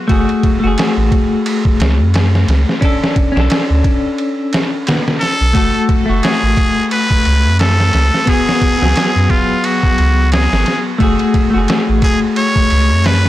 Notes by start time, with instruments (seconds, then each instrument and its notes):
0.08 sub bass F#1, clean electric guitar A3 F#4 G#4, kick, ride
0.29 ride
0.43 kick, ride
0.60 sub bass F#1, clean electric guitar A3 F#4
0.67 clean electric guitar G#4
0.78 snare, ride
0.97 sub bass A1
1.12 kick, ride
1.46 ride
1.65 kick
1.80 sub bass C#2, snare, ride
1.99 sub bass F#2
2.14 snare, ride
2.35 snare
2.48 sub bass C#2, snare, ride
2.69 snare
2.81 clean electric guitar C#4 D4 A4, kick, ride
3.04 snare
3.16 kick, ride
3.32 clean electric guitar C#4
3.36 sub bass B1, clean electric guitar D4 A4, snare
3.50 snare, ride
3.70 sub bass D2
3.84 kick, ride
4.18 ride
4.53 snare, ride
4.87 snare, ride
5.08 snare
5.21 muted trumpet A4, snare, ride
5.41 sub bass B1
5.53 sub bass F#1, clean electric guitar A3 F#4 A4, kick, ride
5.74 ride
5.89 kick, ride
6.06 sub bass F#1, clean electric guitar A3 F#4
6.23 muted trumpet G#4, snare, ride
6.43 sub bass A1
6.57 kick, ride
6.91 muted trumpet B4, ride
7.11 kick
7.25 sub bass C#2, ride
7.45 sub bass F#2
7.59 muted trumpet A4, snare, ride
7.80 snare
7.93 sub bass C#2, snare, ride
8.14 snare
8.26 clean electric guitar B3 F#4 G#4, muted trumpet G#4, kick, ride
8.49 snare
8.62 kick, ride
8.78 sub bass C#2, clean electric guitar F#3 B3
8.83 clean electric guitar G#4, snare
8.96 snare, ride
9.16 sub bass F#2
9.30 muted trumpet F4, kick, ride
9.64 muted trumpet F#4, ride
9.83 kick
9.98 sub bass C#2, ride
10.32 muted trumpet G#4, snare, ride
10.52 sub bass G#1, snare
10.66 snare, ride
10.98 sub bass F#1, clean electric guitar A3 F#4 G#4, kick, ride
11.19 ride
11.34 kick, ride
11.50 clean electric guitar A3 F#4
11.54 sub bass F#1, clean electric guitar G#4
11.68 snare, ride
11.89 sub bass A1
12.02 muted trumpet G#4, kick, ride
12.36 muted trumpet C#5, ride
12.56 kick
12.70 sub bass C#2, ride
12.91 sub bass F#2
13.04 muted trumpet B4, snare, ride
13.25 snare